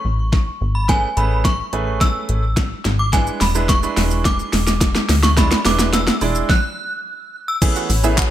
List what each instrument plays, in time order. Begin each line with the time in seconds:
Already playing: synth bell C#6
0.05 analog synth bass A1
0.33 kick, snare
0.61 analog synth bass G#1
0.75 synth bell B5
0.89 grand piano A3 C#4 G#4 B4, synth bell G#5, kick, snare, closed hi-hat
1.17 analog synth bass A1, grand piano A3 C#4 G#4 B4, synth bell B5, closed hi-hat
1.45 synth bell C#6, kick, snare, closed hi-hat
1.73 analog synth bass A1, grand piano A3 C#4 G#4 B4, closed hi-hat
2.01 synth bell E6, kick, snare, closed hi-hat
2.29 analog synth bass A1, closed hi-hat
2.57 kick, snare, closed hi-hat
2.85 analog synth bass G#1, snare, closed hi-hat
2.99 synth bell D6
3.13 grand piano G#3 D4 E4 B4, synth bell G#5, kick, snare, closed hi-hat, shaker
3.27 shaker
3.41 analog synth bass E1, synth bell B5, snare, open hi-hat, shaker
3.55 grand piano G#3 D4 E4 B4, shaker
3.69 synth bell C#6, kick, snare, closed hi-hat, shaker
3.83 grand piano G#3 D4 E4 B4, shaker
3.97 analog synth bass E1, snare, open hi-hat, shaker
4.11 shaker
4.25 synth bell D6, kick, snare, closed hi-hat, shaker
4.39 shaker
4.53 analog synth bass E1, snare, open hi-hat, shaker
4.67 snare, shaker
4.81 kick, snare, closed hi-hat, shaker
4.95 snare, shaker
5.09 analog synth bass D2, snare, open hi-hat, shaker
5.23 synth bell C#6, snare, shaker
5.37 grand piano G#3 D4 E4 D5, synth bell B5, kick, snare, closed hi-hat, shaker
5.51 snare, shaker
5.65 analog synth bass E1, grand piano G#3 D4 E4 B4, synth bell D6, snare, open hi-hat, shaker
5.79 snare, shaker
5.93 synth bell E6, snare, closed hi-hat, shaker
6.07 snare, shaker
6.21 analog synth bass E1, grand piano G#3 D4 E4 D5, open hi-hat, shaker
6.35 shaker
6.50 synth bell F#6, kick, snare
7.48 synth bell E6
7.62 grand piano E3 A3 B3 C#4 G#4, ambient pad C#5 G#5 B5, kick, closed hi-hat, crash, shaker
7.76 synth pluck F#4 F#5, shaker
7.90 analog synth bass A1, open hi-hat, shaker
8.04 grand piano E3 A3 B3 C#4 G#4, synth pluck E4 E5, shaker
8.18 synth pluck F#4 F#5, kick, clap, closed hi-hat, shaker